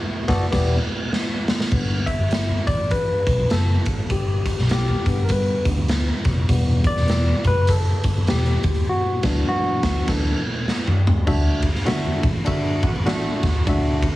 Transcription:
Already playing: grand piano E5
0.28 fingered electric bass F#1, tine electric piano B3 F#4 A4 D5, kick, snare
0.51 fingered electric bass E1, tine electric piano E3 B3 E4 G4 D5, kick, snare, crash
1.13 snare
1.48 snare
1.60 snare
1.72 fingered electric bass G1, tine electric piano D3 G3 B3, kick, crash, muted conga, low conga
2.06 tine electric piano E5, kick, closed hi-hat, high conga
2.19 fingered electric bass G1
2.31 snare, closed hi-hat
2.49 muted conga, high conga
2.67 fingered electric bass A1, tine electric piano D5, kick, closed hi-hat, high conga, low conga
2.91 tine electric piano B4, kick, closed hi-hat
3.09 muted conga
3.27 fingered electric bass B1, kick, closed hi-hat
3.38 high conga
3.50 fingered electric bass F#1, tine electric piano A4, snare, closed hi-hat, muted conga
3.68 muted conga
3.86 fingered electric bass G#1, kick, closed hi-hat, high conga
4.10 fingered electric bass G1, tine electric piano G4, kick, closed hi-hat, low conga
4.28 muted conga
4.46 kick, closed hi-hat, high conga
4.58 fingered electric bass B1, snare
4.69 tine electric piano G4, snare, closed hi-hat
4.88 muted conga, high conga
5.06 fingered electric bass G1, tine electric piano D3 G3 B3, kick, closed hi-hat, high conga, low conga
5.24 tine electric piano A#4
5.29 fingered electric bass G2, tine electric piano B4, kick, closed hi-hat
5.48 muted conga
5.65 fingered electric bass D2, kick, closed hi-hat
5.79 high conga
5.88 snare, closed hi-hat, muted conga
6.08 muted conga
6.25 fingered electric bass F1, kick, snare, closed hi-hat, high conga
6.49 fingered electric bass E1, tine electric piano E3 G3 B3, kick, closed hi-hat, low conga
6.84 tine electric piano D5, kick, closed hi-hat, high conga
6.96 fingered electric bass E1, snare
7.08 snare, closed hi-hat, muted conga
7.26 high conga
7.45 fingered electric bass F#1, tine electric piano B4, kick, closed hi-hat, high conga, low conga
7.67 tine electric piano A4, kick, closed hi-hat, muted conga
7.87 muted conga
8.04 fingered electric bass G1, kick, closed hi-hat
8.18 high conga
8.27 fingered electric bass E1, tine electric piano G4, snare, closed hi-hat, muted conga
8.46 closed hi-hat, muted conga
8.63 fingered electric bass D#2, kick, closed hi-hat, high conga
8.74 closed hi-hat
8.89 tine electric piano F#4
9.23 fingered electric bass D2, tine electric piano E3 F#3 D4, kick, snare, crash
9.48 tine electric piano F#4
9.83 fingered electric bass D2, kick, snare
10.08 fingered electric bass D2, tine electric piano E3 F#3 D4 A4, kick, snare, crash
10.68 snare
10.87 mid tom
11.07 floor tom
11.27 fingered electric bass D2, tine electric piano D3 D4 F#4 A4 E5, kick, crash, low conga
11.62 kick, ride, high conga
11.75 snare
11.85 fingered electric bass D3, tine electric piano D4 F#4 A4 E5, snare, ride, muted conga
12.05 muted conga, high conga
12.23 fingered electric bass A1, kick, ride, high conga, low conga
12.45 fingered electric bass D3, tine electric piano D4 F#4 A4 E5, kick, ride, muted conga
12.65 muted conga
12.83 fingered electric bass A1, saxophone section D3 A3 F#4, kick, ride, high conga
12.96 high conga
13.06 saxophone section D3 A3 F#4, tine electric piano D4 F#4 A4 E5, snare, ride, muted conga
13.43 fingered electric bass D#2, kick, snare, ride, high conga
13.67 fingered electric bass D2, tine electric piano D3 D4 F#4 A4 E5, kick, ride, low conga
14.02 kick, ride, high conga

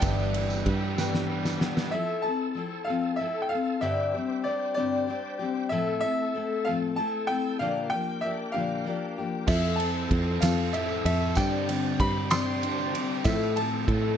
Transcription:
0.00 fingered electric bass G1, steel-string acoustic guitar G2, upright piano G4 B4 E5, grand piano G5, kick, ride, tambourine
0.05 steel-string acoustic guitar E3 G3 B3 D4 G4, tonewheel organ B4 G5 E6
0.19 tambourine
0.34 overdriven electric guitar E3, ride
0.50 tambourine
0.66 fingered electric bass G2, steel-string acoustic guitar G3 B3 D4 G4, kick, ride, tambourine
0.98 steel-string acoustic guitar G2 E3 G3 B3 D4 G4, upright piano G4 B4 G5, snare, tambourine
1.14 snare
1.30 overdriven electric guitar G3
1.45 snare, tambourine
1.61 steel-string acoustic guitar G3 B3 D4 G4, snare
1.77 snare, tambourine
1.91 steel-string acoustic guitar F3 C4 E4 A4, tonewheel organ A4 A5 E6, grand piano E5
2.22 steel-string acoustic guitar E4 A4, grand piano A5
2.28 steel-string acoustic guitar C4
2.55 steel-string acoustic guitar F3 C4 E4 A4
2.85 steel-string acoustic guitar A4, grand piano F5
2.90 steel-string acoustic guitar F3 C4
3.16 steel-string acoustic guitar F3, grand piano E5
3.20 steel-string acoustic guitar C4 E4 A4
3.42 grand piano G5
3.49 steel-string acoustic guitar A4, grand piano F5
3.55 steel-string acoustic guitar C4
3.81 steel-string acoustic guitar G2 D3 G3 C4 D4 G4, tonewheel organ C5 G5 D6, grand piano E5
4.14 steel-string acoustic guitar G3 C4 D4 G4
4.44 steel-string acoustic guitar G3 C4, grand piano D5
4.48 steel-string acoustic guitar D4 G4
4.74 steel-string acoustic guitar G3 C4 D4 G4, grand piano D5
4.79 steel-string acoustic guitar G2 D3
5.07 steel-string acoustic guitar G3 C4 D4 G4
5.39 steel-string acoustic guitar G3 C4 D4 G4
5.69 steel-string acoustic guitar A2 F3 A3 C4 E4 A4, tonewheel organ A4 A5 E6, grand piano E5
6.01 steel-string acoustic guitar E4 A4, grand piano E5
6.05 steel-string acoustic guitar A3 C4
6.35 steel-string acoustic guitar A3 C4 E4 A4
6.65 steel-string acoustic guitar F3 A3 C4 A4, grand piano F5
6.70 steel-string acoustic guitar A2
6.96 steel-string acoustic guitar A3 C4 E4 A4, grand piano A5
7.27 steel-string acoustic guitar C4 E4 A4, grand piano G5
7.31 steel-string acoustic guitar A3
7.59 steel-string acoustic guitar A#2 D3 F3 A#3 D4 G4, tonewheel organ A#4 G5 D6, grand piano F5
7.90 steel-string acoustic guitar A#3 D4 G4, grand piano G5
7.94 steel-string acoustic guitar F3
8.21 steel-string acoustic guitar F3 A#3, grand piano E5
8.25 steel-string acoustic guitar D4 G4
8.52 steel-string acoustic guitar A#2 D3 F3 A#3 D4 G4, grand piano F5
8.84 steel-string acoustic guitar F3 A#3 D4 G4
9.18 steel-string acoustic guitar F3 A#3 D4 G4
9.47 fingered electric bass F2, steel-string acoustic guitar F3 C4 E4 A4, upright piano F4 A4 C5 E5, tonewheel organ A4 E6, grand piano E5, kick, crash, tambourine
9.63 tambourine
9.76 steel-string acoustic guitar A4, grand piano A5, ride
9.81 steel-string acoustic guitar C4 E4
10.10 fingered electric bass F2, steel-string acoustic guitar F3 C4 E4 A4, kick, ride
10.41 fingered electric bass F2, steel-string acoustic guitar C4 A4, upright piano A4 C5, grand piano F5, snare, ride, tambourine
10.45 steel-string acoustic guitar F3
10.73 steel-string acoustic guitar F3 C4 E4 A4, grand piano E5, ride, tambourine
10.89 tambourine
11.05 fingered electric bass F2, steel-string acoustic guitar C4 E4 A4, grand piano E5, ride
11.35 steel-string acoustic guitar G2 D3 G3 C4 D4 G4, fingered electric bass G2, upright piano D4 G4 C5 D5, tonewheel organ C5 G5 D6, grand piano G5, kick, ride, tambourine
11.52 tambourine
11.67 overdriven electric guitar D3, steel-string acoustic guitar G3 C4 D4 G4, ride
11.99 fingered electric bass G2, steel-string acoustic guitar G3 C4 D4 G4, grand piano B5, kick, ride
12.30 steel-string acoustic guitar G2 D3 G3 C4 D4 G4, upright piano D4 G4 C5 D5, grand piano C6, snare, ride, tambourine
12.61 steel-string acoustic guitar G3 C4 D4, ride, tambourine
12.66 steel-string acoustic guitar G4
12.78 tambourine
12.93 steel-string acoustic guitar C4 D4 G4, ride
12.97 steel-string acoustic guitar G3
13.24 fingered electric bass A2, steel-string acoustic guitar A2 F3 A3 C4 E4 A4, upright piano F4 A4 C5 E5, tonewheel organ A4 A5 E6, grand piano E5, kick, ride, tambourine
13.40 tambourine
13.56 overdriven electric guitar F3, steel-string acoustic guitar A3 C4 A4, grand piano A5, ride
13.88 fingered electric bass A2, steel-string acoustic guitar A3 C4 E4 A4, kick, ride

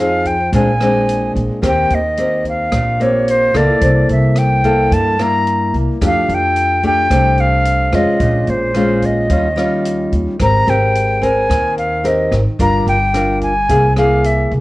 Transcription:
Already playing: upright bass F2, nylon-string guitar F3 C4
0.00 nylon-string guitar D#4 G#4, flute F5
0.25 flute G5, kick, closed hi-hat
0.53 upright bass A#1, nylon-string guitar A#2 G#3 C4 D4, flute G#5, kick, closed hi-hat
0.81 nylon-string guitar G#3 C4 D4, cross-stick, closed hi-hat
1.09 closed hi-hat
1.35 upright bass A#1, kick, closed hi-hat
1.62 upright bass D#2, nylon-string guitar D#3 A#3 C4 G4, kick, cross-stick, closed hi-hat
1.67 flute G5
1.90 upright bass D#2, closed hi-hat
1.95 flute D#5
2.17 nylon-string guitar A#3 C4 G4, closed hi-hat
2.45 kick, closed hi-hat
2.49 flute F5
2.72 upright bass A#1, nylon-string guitar A#2, kick, cross-stick, closed hi-hat
3.00 nylon-string guitar A#3 C4 G4, flute C#5, closed hi-hat
3.27 flute C5, closed hi-hat
3.54 upright bass C#2, nylon-string guitar A#3 E4 A4, flute D5, kick, cross-stick, closed hi-hat
3.81 upright bass C2, nylon-string guitar C3, kick, closed hi-hat
4.09 upright bass C2, flute E5, closed hi-hat
4.36 flute G5, cross-stick, closed hi-hat
4.64 nylon-string guitar A#3 E4 A4, kick, closed hi-hat
4.91 upright bass G2, nylon-string guitar G3, flute A5, kick, closed hi-hat
5.19 nylon-string guitar A#3 E4, flute A#5, cross-stick, closed hi-hat
5.47 closed hi-hat
5.74 upright bass C2, kick, closed hi-hat
6.01 upright bass F2, nylon-string guitar F3 A3 D4 G4, kick, cross-stick, closed hi-hat
6.06 flute F5
6.29 upright bass F2, closed hi-hat
6.34 flute G5
6.56 closed hi-hat
6.83 nylon-string guitar A3 D4 G4, flute G5, kick, closed hi-hat
7.11 upright bass C2, nylon-string guitar C3 A3 D4 G4, kick, cross-stick, closed hi-hat
7.38 flute F5, closed hi-hat
7.66 closed hi-hat
7.93 upright bass F2, nylon-string guitar G#3 C#4 F4, flute D#5, kick, cross-stick, closed hi-hat
8.20 upright bass A#1, nylon-string guitar A#2, kick, closed hi-hat
8.47 upright bass A#1, flute C5, closed hi-hat
8.75 nylon-string guitar G#3 C#4 F4, cross-stick, closed hi-hat
9.02 flute D#5, kick, closed hi-hat
9.30 upright bass D#2, nylon-string guitar D#3 G3 C#4 F4, kick, closed hi-hat
9.56 nylon-string guitar G3 C#4 F4, cross-stick, closed hi-hat
9.85 closed hi-hat
10.12 upright bass D#2, kick, closed hi-hat
10.39 upright bass G#1, nylon-string guitar G#3 C4 G4 A#4, flute A#5, kick, cross-stick, closed hi-hat
10.67 upright bass G#1, nylon-string guitar C4 G4 A#4, flute G5, closed hi-hat
10.95 closed hi-hat
11.21 nylon-string guitar C4 A#4, flute G#5, kick, closed hi-hat
11.49 upright bass D#2, nylon-string guitar D#3, kick, cross-stick, closed hi-hat
11.78 flute F5, closed hi-hat
12.04 nylon-string guitar C4 G4 A#4, flute D#5, closed hi-hat
12.32 upright bass G#1, kick, cross-stick, closed hi-hat
12.59 upright bass G1, nylon-string guitar G3 D4 F4 A#4, flute A#5, kick, closed hi-hat
12.87 upright bass G1, flute G5, closed hi-hat
13.14 nylon-string guitar D4 F4 A#4, cross-stick, closed hi-hat
13.41 flute G#5, kick, closed hi-hat
13.69 upright bass C2, nylon-string guitar C3 A#3 E4 G#4, kick, closed hi-hat
13.96 nylon-string guitar A#3 E4 G#4, flute F5, cross-stick, closed hi-hat
14.24 flute E5, closed hi-hat
14.51 upright bass C2, kick, closed hi-hat

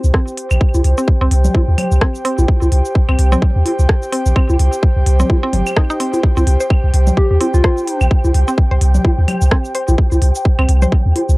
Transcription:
Already playing: analog synth pad G4 C5 G5
0.04 sub bass C2, cabasa
0.14 synth arpeggio sound C4, kick, cross-stick
0.28 cabasa
0.38 open hi-hat
0.51 sub bass A#1, cabasa, claves
0.61 kick
0.74 sub bass C2, high conga, cabasa
0.84 sub bass C2, open hi-hat
0.98 synth arpeggio sound C4, cabasa
1.08 kick
1.21 sub bass C2, synth arpeggio sound C4
1.31 sub bass C2, open hi-hat
1.45 low conga, cabasa
1.55 kick, high conga
1.68 sub bass D#2
1.78 open hi-hat, low conga, claves
1.92 sub bass C2, cabasa
2.01 synth arpeggio sound C4, kick, cross-stick
2.15 cabasa
2.25 synth arpeggio sound C4, open hi-hat
2.38 sub bass A#1, high conga, cabasa
2.48 kick
2.62 sub bass C2, high conga, cabasa
2.72 sub bass C2, open hi-hat
2.85 cabasa
2.95 kick
3.09 sub bass C2, synth arpeggio sound C4, claves
3.19 sub bass C2, open hi-hat
3.32 synth arpeggio sound C4, low conga, cabasa
3.42 kick
3.56 sub bass D#2
3.66 open hi-hat, high conga
3.79 sub bass C2, cabasa
3.89 kick, cross-stick
4.03 cabasa
4.12 synth arpeggio sound C4, open hi-hat
4.26 sub bass A#1, cabasa
4.36 synth arpeggio sound C4, kick, claves
4.49 sub bass C2, high conga, cabasa
4.59 sub bass C2, open hi-hat
4.73 cabasa
4.83 kick
4.96 sub bass C2
5.06 sub bass C2, open hi-hat
5.20 synth arpeggio sound C4, low conga, cabasa
5.30 kick, high conga
5.43 synth arpeggio sound C4
5.53 sub bass G1, open hi-hat, low conga
5.67 cabasa, claves
5.76 synth arpeggio sound D#4, kick, cross-stick
5.90 synth arpeggio sound D#4, cabasa
6.00 synth arpeggio sound C4, open hi-hat
6.14 open hi-hat, high conga, cabasa
6.23 synth texture G5, kick
6.37 sub bass C2, synth arpeggio sound C4, high conga, cabasa
6.47 sub bass C2, open hi-hat
6.60 synth arpeggio sound C5, cabasa
6.70 kick, claves
6.84 sub bass C2
6.94 sub bass C2, open hi-hat
7.07 low conga, cabasa
7.17 soft synth lead G4, kick
7.31 sub bass D#2, soft synth lead G4
7.41 synth arpeggio sound C4, open hi-hat, high conga
7.54 sub bass C2, soft synth lead F4, cabasa
7.64 synth arpeggio sound C5, kick, cross-stick
7.78 cabasa
7.87 open hi-hat
8.01 sub bass A#1, cabasa, claves
8.11 kick
8.24 sub bass C2, high conga, cabasa
8.34 sub bass C2, open hi-hat
8.48 synth arpeggio sound C4, cabasa
8.58 kick
8.71 sub bass C2, synth arpeggio sound C5
8.81 sub bass C2, open hi-hat
8.95 low conga, cabasa
9.05 kick, high conga
9.18 sub bass D#2
9.28 open hi-hat, low conga, claves
9.42 sub bass C2, cabasa
9.51 synth arpeggio sound C4, kick, cross-stick
9.65 cabasa
9.75 synth arpeggio sound C5, open hi-hat
9.88 sub bass A#1, high conga, cabasa
9.98 kick
10.12 sub bass C2, high conga, cabasa
10.22 sub bass C2, open hi-hat
10.35 cabasa
10.45 kick
10.59 sub bass C2, synth arpeggio sound C4, claves
10.69 sub bass C2, open hi-hat
10.82 synth arpeggio sound C5, low conga, cabasa
10.92 kick
11.06 sub bass D#2
11.16 open hi-hat, high conga
11.29 sub bass C2, cabasa

